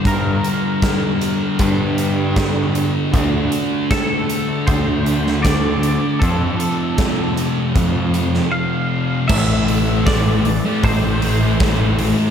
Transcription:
<<
  \new Staff \with { instrumentName = "Clean electric guitar" } { \time 4/4 \key a \phrygian \tempo 4 = 78 bes'2 r2 | r4 a'4 c''4 d''4 | a'2 r4 f''4 | e''4 d''4 c''2 | }
  \new Staff \with { instrumentName = "Distorted electric guitar" } { \clef bass \time 4/4 \key a \phrygian <g, d g>1 | <d a d'>1 | <f, c f>1 | <a, e a>8 <a, e a>8 <a, e a>16 <e a>8 <e a>8 <e a>16 <a, e a>16 <e a>16 <a, e a>8 <a, e a>16 <e a>16 | }
  \new Staff \with { instrumentName = "Picked electric bass" } { \clef bass \time 4/4 \key a \phrygian g,8 r4. g,2 | d,8 r4. d,2 | f,8 r4. f,4 r4 | a,,2 a,,2 | }
  \new DrumStaff \with { instrumentName = "Drums" } \drummode { \time 4/4 <hh bd>8 hh8 <hh bd sn>8 hh8 <hh bd>8 hh8 <hh bd sn>8 hh8 | <hh bd>8 hh8 <hh bd sn>8 hh8 <hh bd>8 hh16 sn16 <hh bd sn>8 hh8 | <hh bd>8 hh8 <hh bd sn>8 hh8 <hh bd>8 hh16 sn16 r4 | <cymc bd>8 hho8 <hho bd sn>8 hho8 <hho bd>8 hho8 <hho bd sn>8 hho8 | }
>>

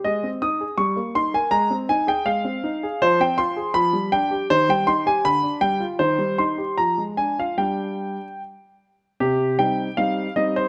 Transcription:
\new Staff \with { instrumentName = "Grand piano" } { \time 2/4 \key aes \lydian \tempo 4 = 80 << { ees''8 ees'''8 des'''8 c'''16 aes''16 | bes''8 aes''16 g''16 f''4 | \key c \minor c''16 g''16 c'''8 b''8 g''8 | c''16 g''16 c'''16 aes''16 b''8 g''8 |
c''8 c'''8 bes''8 aes''16 f''16 | g''4 r4 | g'8 g''8 f''8 ees''16 c''16 | } \\ { aes16 c'16 ees'16 aes'16 g16 bes16 ees'16 bes'16 | aes16 c'16 ees'16 aes'16 aes16 c'16 ees'16 aes'16 | f16 c'16 f'16 aes'16 f16 g16 d'16 g'16 | ees16 g16 ees'16 g'16 d16 d'16 g16 f'16 |
ees16 g16 ees'16 g'16 f16 aes16 d'16 f'16 | <g d'>4 r4 | c8 <g c' ees'>8 <g c' ees'>8 <g c' ees'>8 | } >> }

